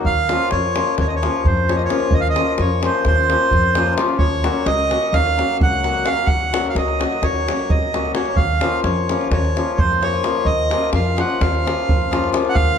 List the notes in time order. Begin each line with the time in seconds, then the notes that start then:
Already playing: F#3
0.04 D#2 F5, davul low
0.29 F3 A#3 C#4 F4, davul high
0.51 F2 C#5, davul high
0.75 F3 A#3 C#4 F4, davul high
0.87 davul high
0.98 D#2 C#5, davul high, davul low
1.07 D#5, davul high
1.16 C#5
1.22 F3 A#3 C#4 F4, davul high
1.45 F2 C5, davul low
1.57 davul high
1.68 F3 A#3 C#4 F4 C#5, davul high
1.76 D#5, davul high
1.85 C#5
1.89 F3 A#3 C#4 F4, davul high
2.00 davul high
2.11 D#2 D#5, davul low
2.21 F5
2.30 D#5
2.36 F3 A#3 C#4 F4, davul high
2.58 F2 C#5, davul high
2.83 F3 A#3 C#4 F4 C5, davul high
2.95 davul high
3.05 D#2 C5, davul high, davul low
3.18 davul high
3.29 F3 A#3 C#4 F4, davul high
3.51 F2, davul low
3.64 davul high
3.75 F3 A#3 C#4 F4, davul high
3.87 davul high
3.97 F3 A#3 C#4 F4, davul high
4.09 davul high
4.18 D#2 C#5, davul low
4.43 F#3 A#3 C#4 F#4, davul high
4.66 C#2 D#5, davul high
4.89 F#3 A#3 C#4 F#4, davul high
5.03 davul high
5.13 D#2 F5, davul high, davul low
5.27 davul high
5.37 F#3 A#3 C#4 F#4, davul high
5.61 C#2 F#5, davul low
5.73 davul high
5.83 F#3 A#3 C#4 F#4, davul high
5.94 davul high
6.04 F#3 A#3 C#4 F#4 F5, davul high
6.17 davul high
6.26 D#2 F#5, davul low
6.41 davul high
6.53 F#3 A#3 C#4 F#4, davul high
6.65 davul high
6.69 F5
6.75 C#2 D#5, davul high
6.88 davul high
6.99 F#3 A#3 C#4 F#4, davul high
7.12 davul high
7.22 D#2 C#5, davul high, davul low
7.37 davul high
7.48 F#3 A#3 C#4 F#4, davul high
7.59 davul high
7.70 C#2 D#5, davul low
7.83 davul high
7.93 F#3 A#3 C#4 F#4, davul high
8.05 davul high
8.15 F#3 A#3 C#4 F#4 C#5, davul high
8.26 davul high
8.36 D#2 F5, davul low
8.61 F3 A#3 C#4 F4, davul high
8.84 F2 C#5, davul high
9.09 F3 A#3 C#4 F4, davul high
9.21 davul high
9.31 D#2 C#5, davul high, davul low
9.45 davul high
9.56 F3 A#3 C#4 F4, davul high
9.78 F2 C5, davul low
9.91 davul high
10.01 F3 A#3 C#4 F4 C#5, davul high
10.14 davul high
10.24 F3 A#3 C#4 F4, davul high
10.35 davul high
10.45 D#2 D#5, davul low
10.70 F3 A#3 C#4 F4, davul high
10.93 F2 F5, davul high
11.16 F3 A#3 C#4 F4 F#5, davul high
11.30 davul high
11.41 D#2 F5, davul high, davul low
11.55 davul high
11.65 F3 A#3 C#4 F4, davul high
11.89 F2, davul low
12.02 davul high
12.11 F3 A#3 C#4 F4, davul high
12.24 davul high
12.32 F3 A#3 C#4 F4, davul high
12.45 F#5, davul high
12.55 D#2 F5, davul low